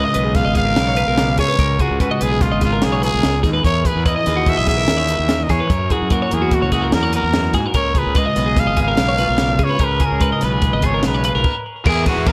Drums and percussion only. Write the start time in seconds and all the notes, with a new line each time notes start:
0.14 closed hi-hat
0.35 kick, snare, closed hi-hat
0.55 kick, closed hi-hat
0.76 snare, closed hi-hat
0.96 closed hi-hat
1.18 snare, closed hi-hat
1.38 kick, closed hi-hat
1.59 kick, closed hi-hat
1.79 kick, closed hi-hat
2.00 kick, closed hi-hat
2.21 closed hi-hat
2.41 kick, snare, closed hi-hat
2.61 kick, snare, closed hi-hat
2.82 snare, closed hi-hat
3.03 closed hi-hat
3.23 snare, closed hi-hat
3.44 kick, snare, closed hi-hat
3.64 kick, closed hi-hat
3.85 kick, closed hi-hat
4.06 kick, closed hi-hat
4.26 snare, closed hi-hat
4.46 kick, closed hi-hat
4.67 kick, snare, closed hi-hat
4.88 snare, closed hi-hat
5.08 closed hi-hat
5.29 snare, closed hi-hat
5.49 kick, snare, closed hi-hat
5.70 kick, closed hi-hat
5.90 kick, closed hi-hat
6.10 kick, closed hi-hat
6.31 closed hi-hat
6.51 kick, closed hi-hat
6.72 kick, closed hi-hat
6.92 snare, closed hi-hat
7.13 closed hi-hat
7.34 snare, closed hi-hat
7.54 kick, snare, closed hi-hat
7.74 kick, closed hi-hat
7.95 kick, closed hi-hat
8.15 kick, snare, closed hi-hat
8.36 snare, closed hi-hat
8.57 kick, snare, closed hi-hat
8.77 kick, closed hi-hat
8.97 snare, closed hi-hat
9.18 snare, closed hi-hat
9.38 snare, closed hi-hat
9.59 kick, closed hi-hat
9.79 kick, closed hi-hat
10.00 kick, closed hi-hat
10.21 kick, closed hi-hat
10.41 snare, closed hi-hat
10.62 kick, closed hi-hat
10.82 kick, closed hi-hat
11.03 snare, closed hi-hat
11.24 closed hi-hat
11.44 kick, crash
11.85 kick, crash
12.06 kick, snare, ride
12.26 kick, snare, ride